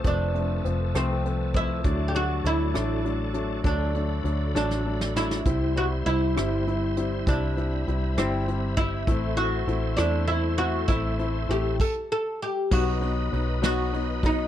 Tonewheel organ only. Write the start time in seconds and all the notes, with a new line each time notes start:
Already playing: F3 A4 A5
0.04 B4
1.84 F#4 A4 D5
3.64 B5
5.45 G3 C5 E5 C6
7.26 B5
9.08 A4 C6
12.72 F#4 B4 D#5 B5